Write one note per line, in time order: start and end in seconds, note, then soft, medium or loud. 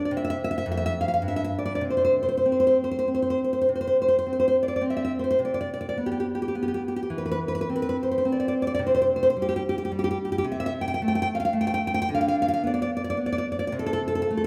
0.05 0.11 D5 medium
0.11 0.64 C3 medium
0.17 0.23 E5 medium
0.25 0.29 E5 medium
0.30 0.37 E5 medium
0.44 0.50 E5 medium
0.51 0.57 E5 medium
0.58 0.65 E5 medium
0.66 1.21 F2 medium
0.72 0.76 E5 medium
0.77 0.85 E5 medium
0.86 0.93 E5 medium
1.01 1.07 F5 medium
1.08 1.12 F5 medium
1.14 1.22 F5 medium
1.22 1.81 G2 medium
1.28 1.35 E5 medium
1.36 1.43 E5 medium
1.44 1.52 E5 medium
1.59 1.64 D5 medium
1.66 1.74 D5 medium
1.75 1.83 D5 medium
1.81 2.43 C3 medium
1.90 1.96 C5 medium
1.97 2.03 C5 medium
2.05 2.14 C5 medium
2.23 2.27 C5 medium
2.29 2.36 C5 medium
2.37 2.46 C5 medium
2.46 3.07 C4 soft
2.52 2.59 C5 medium
2.60 2.66 C5 medium
2.67 2.76 C5 medium
2.84 2.90 C5 medium
2.91 2.98 C5 medium
2.99 3.07 C5 medium
3.08 3.65 C4 soft
3.15 3.21 C5 medium
3.22 3.29 C5 medium
3.30 3.39 C5 medium
3.44 3.52 C5 soft
3.53 3.60 C5 medium
3.61 3.69 C5 medium
3.69 4.25 C3 soft
3.75 3.80 C5 soft
3.81 3.86 C5 medium
3.87 3.96 C5 medium
4.02 4.07 C5 medium
4.08 4.18 C5 medium
4.19 4.26 C5 medium
4.26 4.80 C4 soft
4.33 4.38 C5 medium
4.40 4.47 C5 medium
4.48 4.55 C5 medium
4.63 4.67 D5 medium
4.68 4.75 D5 medium
4.76 4.83 D5 medium
4.81 5.35 C4 soft
4.90 4.95 E5 medium
4.97 5.03 E5 medium
5.05 5.12 E5 medium
5.19 5.23 C5 soft
5.24 5.29 C5 medium
5.31 5.39 C5 medium
5.39 5.94 C3 soft
5.45 5.53 D5 medium
5.54 5.59 D5 medium
5.61 5.68 D5 medium
5.74 5.80 D5 medium
5.81 5.88 D5 medium
5.89 5.96 D5 medium
5.97 6.54 B3 soft
6.06 6.10 G4 medium
6.12 6.18 G4 medium
6.20 6.26 G4 medium
6.35 6.41 G4 medium
6.42 6.47 G4 medium
6.48 6.55 G4 medium
6.55 7.07 B3 soft
6.63 6.67 G4 medium
6.68 6.73 G4 medium
6.74 6.82 G4 medium
6.88 6.95 G4 medium
6.96 7.01 G4 medium
7.03 7.10 G4 medium
7.10 7.65 E3 soft
7.18 7.24 B4 medium
7.26 7.30 B4 medium
7.31 7.38 B4 medium
7.48 7.54 B4 medium
7.55 7.60 B4 medium
7.61 7.67 B4 medium
7.70 8.24 C4 soft
7.76 7.81 B4 medium
7.82 7.88 B4 medium
7.89 7.96 B4 medium
8.03 8.10 C5 medium
8.11 8.17 C5 medium
8.18 8.24 C5 medium
8.25 8.75 C4 soft
8.32 8.38 D5 medium
8.40 8.45 D5 medium
8.48 8.53 D5 medium
8.62 8.66 D5 medium
8.67 8.73 D5 medium
8.74 8.80 D5 medium
8.79 9.33 C3 medium
8.87 8.93 C5 medium
8.95 9.00 C5 medium
9.02 9.07 C5 medium
9.16 9.22 C5 medium
9.23 9.29 C5 medium
9.30 9.36 C5 medium
9.37 9.90 G3 soft
9.42 9.47 G4 medium
9.49 9.55 G4 medium
9.56 9.62 G4 medium
9.69 9.75 G4 medium
9.78 9.83 G4 medium
9.85 9.90 G4 medium
9.92 10.41 G3 medium
9.99 10.03 G4 medium
10.04 10.09 G4 medium
10.11 10.17 G4 medium
10.25 10.31 G4 medium
10.32 10.37 G4 medium
10.38 10.45 G4 medium
10.44 10.97 C3 medium
10.52 10.58 E5 medium
10.60 10.65 E5 medium
10.66 10.72 E5 medium
10.81 10.87 G5 medium
10.88 10.93 G5 medium
10.94 11.00 G5 medium
11.02 11.52 A3 medium
11.08 11.14 G5 medium
11.15 11.21 G5 medium
11.22 11.27 G5 medium
11.35 11.39 F5 medium
11.40 11.44 F5 medium
11.45 11.52 F5 medium
11.53 12.04 A3 medium
11.61 11.66 G5 medium
11.67 11.73 G5 medium
11.74 11.80 G5 medium
11.87 11.93 G5 medium
11.94 12.01 G5 medium
12.02 12.08 G5 medium
12.09 12.61 D3 medium
12.15 12.20 F5 medium
12.21 12.27 F5 medium
12.28 12.35 F5 medium
12.42 12.47 F5 medium
12.48 12.52 F5 medium
12.54 12.61 F5 medium
12.64 13.16 B3 soft
12.64 12.73 D5 medium
12.74 12.81 D5 medium
12.82 12.89 D5 medium
12.97 13.03 D5 medium
13.04 13.09 D5 medium
13.10 13.17 D5 medium
13.17 13.69 B3 medium
13.26 13.31 D5 medium
13.32 13.37 D5 medium
13.38 13.45 D5 medium
13.52 13.58 D5 medium
13.59 13.66 D5 medium
13.67 13.74 D5 medium
13.72 14.28 C3 medium
13.79 13.85 A4 medium
13.86 13.92 A4 medium
13.93 14.01 A4 medium
14.08 14.14 A4 medium
14.15 14.21 A4 medium
14.22 14.30 A4 medium
14.31 14.47 A3 soft
14.37 14.43 A4 medium